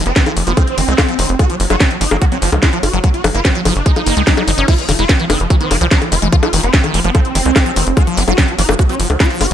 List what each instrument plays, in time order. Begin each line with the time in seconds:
0.06 analog synth bass F1, digital synth lead C4, closed hi-hat
0.16 digital synth lead F3, acid bass F#3, kick, snare, closed hi-hat
0.26 acid bass D#3, digital synth lead F3, closed hi-hat, high bongo
0.37 analog synth bass F1, digital synth lead F3, open hi-hat
0.47 analog synth bass F1, acid bass F3, digital synth lead C4, closed hi-hat
0.57 acid bass F3, kick, closed hi-hat, high bongo
0.67 closed hi-hat
0.78 analog synth bass F1, acid bass D#3, open hi-hat
0.88 analog synth bass C2, acid bass G#3, closed hi-hat
0.98 acid bass F4, kick, snare, open hi-hat, high bongo
1.09 acid bass F3, closed hi-hat
1.19 analog synth bass F1, acid bass D#3, open hi-hat
1.29 analog synth bass F1, closed hi-hat
1.39 acid bass G#3, digital synth lead F#4, kick, closed hi-hat, high bongo
1.50 acid bass F3, digital synth lead F#3, closed hi-hat
1.60 analog synth bass F#1, digital synth lead F#3, open hi-hat
1.70 analog synth bass F#1, acid bass F#3, digital synth lead F#4, closed hi-hat, high bongo
1.80 acid bass F#3, digital synth lead F#3, kick, snare, closed hi-hat
1.91 digital synth lead F#3, closed hi-hat
2.01 analog synth bass F#1, acid bass F3, digital synth lead D#4, open hi-hat
2.11 analog synth bass F#1, digital synth lead F#3, acid bass A#3, closed hi-hat, high bongo
2.22 digital synth lead F#3, acid bass F#4, kick, closed hi-hat
2.32 acid bass F#3, digital synth lead C#4, closed hi-hat
2.42 analog synth bass F#1, acid bass F3, digital synth lead F#3, open hi-hat
2.52 analog synth bass C#2, digital synth lead F#3, closed hi-hat, high bongo
2.63 acid bass G#3, digital synth lead F4, kick, snare, closed hi-hat
2.73 acid bass F3, digital synth lead F#3, closed hi-hat
2.83 analog synth bass F#1, digital synth lead F#4, open hi-hat, high bongo
2.93 analog synth bass F#1, digital synth lead F#3, acid bass F#3, closed hi-hat
3.04 digital synth lead F#3, acid bass F#3, kick, closed hi-hat
3.14 digital synth lead F#4, closed hi-hat
3.24 analog synth bass F#1, acid bass F3, digital synth lead F#3, open hi-hat, high bongo
3.35 analog synth bass F#1, acid bass A#3, digital synth lead F4, closed hi-hat
3.45 digital synth lead F#3, acid bass F#4, kick, snare, closed hi-hat
3.55 acid bass F#3, digital synth lead F#3, closed hi-hat
3.65 analog synth bass F#1, acid bass F3, digital synth lead F#3, open hi-hat, high bongo
3.76 analog synth bass F#1, digital synth lead D#4, closed hi-hat
3.86 acid bass G#3, kick, closed hi-hat
3.96 acid bass F3, closed hi-hat, high bongo
4.06 analog synth bass F#1, acid bass A#3, open hi-hat
4.17 analog synth bass C#2, acid bass G#3, closed hi-hat
4.27 acid bass F#3, kick, snare, open hi-hat
4.37 acid bass F#3, closed hi-hat, high bongo
4.48 analog synth bass F#1, acid bass F#3, open hi-hat
4.58 analog synth bass F#1, acid bass C#4, closed hi-hat
4.68 acid bass F3, digital synth lead F4, kick, closed hi-hat, crash
4.78 digital synth lead F3, closed hi-hat
4.89 analog synth bass F1, acid bass D#3, digital synth lead F3, open hi-hat, high bongo
4.99 analog synth bass F1, acid bass G#3, digital synth lead F4, closed hi-hat
5.09 digital synth lead F3, acid bass F4, kick, snare, closed hi-hat
5.20 acid bass F3, digital synth lead F3, closed hi-hat
5.30 analog synth bass F1, acid bass D#3, digital synth lead C4, open hi-hat, high bongo
5.40 analog synth bass F1, digital synth lead F3, closed hi-hat
5.50 digital synth lead F3, acid bass F#3, kick, closed hi-hat
5.61 acid bass D#3, digital synth lead C4, closed hi-hat
5.71 analog synth bass F1, digital synth lead F3, acid bass C4, open hi-hat, high bongo
5.81 analog synth bass C2, digital synth lead F3, acid bass F3, closed hi-hat
5.91 acid bass F3, digital synth lead D#4, kick, snare, closed hi-hat
6.02 digital synth lead F3, closed hi-hat, high bongo
6.12 analog synth bass F1, acid bass D#3, digital synth lead F4, open hi-hat
6.22 analog synth bass F1, digital synth lead F3, acid bass G#3, closed hi-hat
6.32 digital synth lead F3, acid bass F4, kick, closed hi-hat
6.43 acid bass F3, digital synth lead F4, closed hi-hat, high bongo
6.53 analog synth bass F1, acid bass D#3, digital synth lead F3, open hi-hat
6.63 analog synth bass F1, digital synth lead C4, closed hi-hat
6.74 digital synth lead F3, acid bass F#3, kick, snare, closed hi-hat
6.84 acid bass D#3, digital synth lead F3, closed hi-hat, high bongo
6.94 analog synth bass F1, digital synth lead F3, acid bass C4, open hi-hat
7.04 analog synth bass F1, acid bass F3, digital synth lead C4, closed hi-hat
7.15 acid bass F3, kick, closed hi-hat, high bongo
7.25 closed hi-hat
7.35 analog synth bass F1, acid bass D#3, open hi-hat
7.46 analog synth bass C2, acid bass G#3, closed hi-hat
7.56 acid bass F4, kick, snare, open hi-hat, high bongo
7.66 acid bass F3, closed hi-hat
7.76 analog synth bass F1, acid bass D#3, open hi-hat
7.87 analog synth bass F1, closed hi-hat
7.97 acid bass G#3, digital synth lead F#4, kick, closed hi-hat, high bongo
8.07 acid bass F3, digital synth lead F#3, closed hi-hat
8.17 analog synth bass F#1, digital synth lead F#3, acid bass C#4, open hi-hat
8.28 analog synth bass F#1, acid bass F#3, digital synth lead F#4, closed hi-hat, high bongo
8.38 acid bass F#3, digital synth lead F#3, kick, snare, closed hi-hat
8.48 digital synth lead F#3, closed hi-hat
8.59 analog synth bass F#1, acid bass F3, digital synth lead D#4, open hi-hat
8.69 analog synth bass F#1, digital synth lead F#3, acid bass A#3, high bongo
8.79 digital synth lead F#3, acid bass F#4, kick, closed hi-hat
8.89 acid bass F#3, digital synth lead C#4, closed hi-hat
9.00 analog synth bass F#1, acid bass F3, digital synth lead F#3, open hi-hat
9.10 analog synth bass C#2, digital synth lead F#3, closed hi-hat, high bongo
9.20 acid bass G#3, digital synth lead F4, kick, snare, closed hi-hat
9.30 acid bass F3, digital synth lead F#3, closed hi-hat
9.41 analog synth bass F#1, acid bass C#4, digital synth lead F#4, open hi-hat, high bongo